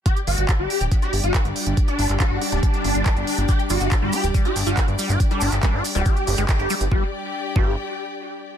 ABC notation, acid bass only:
X:1
M:4/4
L:1/16
Q:1/4=140
K:none
V:1 name="Acid bass" clef=bass
z16 | z16 | G z G, G z G, G z G, G z G, G z G, G | z G, G z G, G z G, G2 G, _A, z G G, z |
G, z4 z G,2 z8 |]